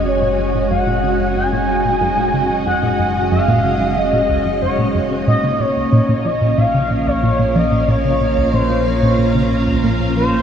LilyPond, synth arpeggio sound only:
\new Staff \with { instrumentName = "Synth arpeggio sound" } { \clef bass \time 4/4 \key bes \minor \tempo 4 = 92 ges,16 bes,16 ges,16 bes,16 ges,16 bes,16 des16 ges,16 ges,16 bes,16 ges,16 bes,16 ges,16 bes,16 des16 ges,16 | ges,16 bes,16 ges,16 bes,16 ges,16 bes,16 des16 ges,16 ges,16 bes,16 des,16 ges,16 ges,16 bes,16 ges,16 des16 | bes,16 des16 bes,16 des,16 bes,16 bes,16 f16 bes,16 bes,16 des16 bes,16 des,16 bes,16 bes,16 f16 bes,16 | bes,16 des16 bes,16 des,16 bes,16 bes,16 f16 bes,16 bes,16 des16 bes,16 des,16 bes,16 bes,16 f16 bes,16 | }